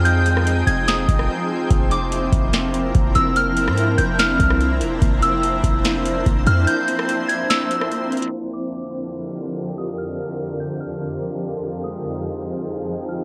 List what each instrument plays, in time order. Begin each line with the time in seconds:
Already playing: 808-style bass F2, ambient pad F3 C4 D#4 G#4 G5, harp G#3 D#4 F4, synth texture D#4 G#4 G5
0.05 harp F3, synth bell G6, closed hi-hat
0.26 harp G#3, closed hi-hat
0.37 cross-stick
0.46 harp D#4, closed hi-hat
0.67 808-style bass F1, synth bell G#6, closed hi-hat
0.88 synth bell D#6, snare, closed hi-hat
1.08 808-style bass F1, kick, closed hi-hat
1.19 cross-stick
1.29 harp F3
1.50 harp F4
1.70 808-style bass F1, harp A#3, ambient pad D4 E4 A#4, synth texture E4 C5 A#5, kick, closed hi-hat
1.91 harp C4, synth bell D6, closed hi-hat
2.12 harp E4, closed hi-hat
2.32 808-style bass F1, kick, closed hi-hat
2.53 snare, closed hi-hat
2.74 closed hi-hat
2.95 808-style bass F1, harp A#3, kick, closed hi-hat
3.15 808-style bass F1, harp A#4, synth bell E6, closed hi-hat
3.36 harp A#3, synth bell F6, closed hi-hat
3.57 harp C4, closed hi-hat
3.67 808-style bass G#2, cross-stick
3.78 harp E4, closed hi-hat
3.98 808-style bass F1, synth bell G6, closed hi-hat
4.19 synth bell F6, snare, closed hi-hat
4.39 808-style bass C2, kick, closed hi-hat
4.50 cross-stick
4.61 harp A#3, closed hi-hat
4.81 808-style bass E1, harp A#4, closed hi-hat
5.01 808-style bass F1, harp A#3, synth texture A#4, ambient pad C5, kick, closed hi-hat
5.22 harp C4, synth bell E6, closed hi-hat
5.43 harp E4, closed hi-hat
5.64 808-style bass F1, kick, closed hi-hat
5.85 snare, closed hi-hat
6.05 closed hi-hat
6.26 808-style bass F1, harp A#3, kick, closed hi-hat
6.47 808-style bass F2, harp A#4, synth bell F6, closed hi-hat
6.67 harp A#3, synth bell G6, closed hi-hat
6.88 harp C4, closed hi-hat
6.99 cross-stick
7.09 harp E4, closed hi-hat
7.28 synth bell G#6, closed hi-hat
7.50 synth bell E6, snare, closed hi-hat
7.71 closed hi-hat
7.81 cross-stick
7.92 harp A#3, closed hi-hat
8.12 harp A#4, closed hi-hat
8.17 closed hi-hat
8.22 closed hi-hat
8.28 closed hi-hat
8.33 ambient pad F2 D3 F3 G4 A#4, synth texture F4 D5 D#5 G5
8.53 synth bell D6
9.78 synth bell D#6
9.98 synth bell F6
10.60 synth bell G6
10.80 synth bell F6
11.64 harp F3, ambient pad D#4 G#4 G5, synth texture G#4
11.84 harp G#3, synth bell D#6
12.05 harp D#4
12.88 harp F3
13.09 harp F4, synth bell F6